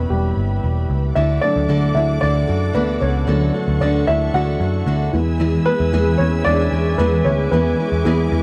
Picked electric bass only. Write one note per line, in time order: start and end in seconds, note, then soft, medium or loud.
0.10 0.32 E1 medium
0.37 0.58 G1 medium
0.64 0.85 E1 medium
0.90 1.11 C#2 medium
1.17 1.38 D2 loud
1.56 1.67 D2 medium
1.69 1.91 D2 medium
1.95 2.17 D2 medium
2.23 2.44 D2 medium
2.49 2.71 F#2 medium
2.75 2.97 D2 medium
3.02 3.24 C#2 medium
3.28 3.50 D2 medium
3.68 3.79 D2 medium
3.81 4.03 D2 medium
4.08 4.29 D2 medium
4.34 4.56 D2 medium
4.60 4.82 F#2 medium
4.86 5.08 D2 medium
5.14 5.57 E2 medium
5.80 5.91 E2 medium
5.93 6.15 E2 medium
6.20 6.41 E2 medium
6.46 6.68 E2 medium
6.72 6.94 E2 medium
6.98 7.20 E2 medium
7.25 7.47 D2 medium
7.52 7.74 E2 medium
7.92 8.03 E2 medium
8.06 8.27 E2 loud
8.32 8.43 E2 medium